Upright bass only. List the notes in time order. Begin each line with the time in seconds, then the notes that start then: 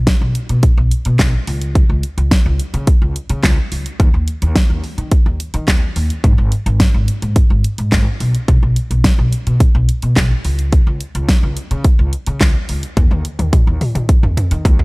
0.21 B1
0.49 B2
0.77 B1
1.06 B2
1.19 B1
1.47 C#2
1.89 C#2
2.18 C#2
2.46 C#2
2.74 C#3
3.02 C#2
3.30 C#3
3.43 C#2
3.72 C#2
4.00 D#2
4.14 D#2
4.42 D#2
4.70 D#2
4.98 D#3
5.26 D#2
5.54 D#3
5.68 D#2
5.96 D#2
6.24 G#1
6.38 G#1
6.66 G#1
6.94 G#1
7.22 G#2
7.50 G#1
7.78 G#2
7.92 G#1
8.20 B1
8.48 B1
8.63 B1
8.91 B1
9.19 B1
9.47 B2
9.75 B1
10.03 B2
10.16 B1
10.45 C#2
10.87 C#2
11.15 C#2
11.43 C#2
11.71 C#3
11.99 C#2
12.27 C#3
12.41 C#2
12.69 C#2
12.97 D#2
13.11 D#2
13.39 D#2
13.67 D#2
13.95 D#3
14.23 D#2
14.51 D#3
14.65 D#2